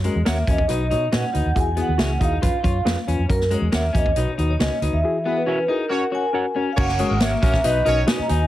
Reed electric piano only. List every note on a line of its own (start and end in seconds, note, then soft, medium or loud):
0.04 0.17 C#4 medium
0.04 0.18 F#4 medium
0.04 0.18 A#4 medium
0.26 0.39 C#4 medium
0.26 0.39 F#4 medium
0.26 0.39 A#4 medium
0.48 0.61 C#4 medium
0.48 0.61 F#4 medium
0.48 0.61 A#4 medium
0.68 1.31 B2 medium
0.68 0.82 D#4 medium
0.68 0.82 F#4 medium
0.68 0.83 B4 medium
0.91 1.04 D#4 medium
0.91 1.04 F#4 medium
0.91 1.05 C#5 medium
1.13 1.26 D#4 medium
1.13 1.26 F#4 medium
1.13 1.26 B4 medium
1.33 1.47 D#4 medium
1.33 1.47 F#4 medium
1.33 1.47 B4 medium
1.55 2.17 E3 medium
1.55 1.69 E4 medium
1.55 1.69 F#4 medium
1.55 1.69 G#4 medium
1.76 1.90 E4 medium
1.76 1.91 F#4 medium
1.76 1.91 G#4 medium
1.98 2.12 E4 medium
1.98 2.12 F#4 medium
1.98 2.12 G#4 medium
2.20 2.34 E4 medium
2.20 2.34 F#4 medium
2.20 2.34 G#4 medium
2.42 2.55 C#4 medium
2.42 2.56 F4 medium
2.42 2.56 B4 loud
2.63 2.77 C#4 medium
2.63 2.77 F4 medium
2.63 2.77 C#5 medium
2.85 2.99 C#4 medium
2.85 2.99 F4 medium
2.85 2.99 B4 medium
3.07 3.21 C#4 medium
3.07 3.21 F4 medium
3.07 3.21 B4 medium
3.29 3.42 C#4 medium
3.29 3.43 F#4 medium
3.29 3.43 A#4 medium
3.51 3.64 C#4 medium
3.51 3.64 F#4 medium
3.51 3.65 A#4 medium
3.72 3.86 C#4 medium
3.72 3.86 F#4 medium
3.72 3.86 A#4 medium
3.94 4.08 C#4 medium
3.94 4.08 F#4 medium
3.94 4.08 A#4 medium
4.18 4.79 B2 medium
4.18 4.30 D#4 medium
4.18 4.30 F#4 medium
4.18 4.31 B4 medium
4.39 4.52 D#4 medium
4.39 4.52 F#4 medium
4.39 4.52 B4 medium
4.61 4.73 D#4 medium
4.61 4.74 F#4 medium
4.61 4.74 B4 medium
4.82 4.95 D#4 medium
4.82 4.95 F#4 medium
4.82 4.96 B4 medium
5.04 5.65 E3 medium
5.04 5.17 E4 medium
5.04 5.17 F#4 medium
5.04 5.17 G#4 loud
5.25 5.38 E4 medium
5.25 5.39 F#4 medium
5.25 5.39 G#4 medium
5.47 5.60 E4 medium
5.47 5.60 F#4 medium
5.47 5.61 A#4 medium
5.69 5.82 E4 medium
5.69 5.82 F#4 medium
5.69 5.82 G#4 medium
5.90 6.03 C#4 medium
5.90 6.04 F#4 medium
5.90 6.04 A#4 loud
6.11 6.25 C#4 medium
6.11 6.25 F#4 medium
6.11 6.25 C#5 medium
6.34 6.47 C#4 medium
6.34 6.47 F#4 medium
6.34 6.47 A#4 medium
6.56 6.69 C#4 medium
6.56 6.69 F#4 medium
6.56 6.69 A#4 medium
6.78 6.91 C#4 medium
6.78 6.91 F#4 medium
6.78 6.91 A#4 medium
6.78 6.91 C#5 loud
6.99 7.12 C#4 loud
6.99 7.12 F#4 medium
6.99 7.12 A#4 loud
6.99 7.12 C#5 loud
7.21 7.34 C#4 medium
7.21 7.34 F#4 medium
7.21 7.34 A#4 medium
7.21 7.34 C#5 medium
7.43 7.55 C#4 medium
7.43 7.55 F#4 medium
7.43 7.56 A#4 medium
7.43 7.56 C#5 medium
7.64 8.25 B2 medium
7.64 7.77 D#4 medium
7.64 7.77 F#4 medium
7.64 7.77 B4 medium
7.64 7.77 D#5 medium
7.85 7.98 D#4 medium
7.85 7.98 F#4 medium
7.85 7.98 B4 medium
7.85 7.99 D#5 medium
8.07 8.20 D#4 loud
8.07 8.20 F#4 medium
8.07 8.20 B4 medium
8.07 8.20 D#5 loud
8.28 8.41 D#4 medium
8.28 8.41 F#4 medium
8.28 8.42 B4 medium
8.28 8.42 D#5 medium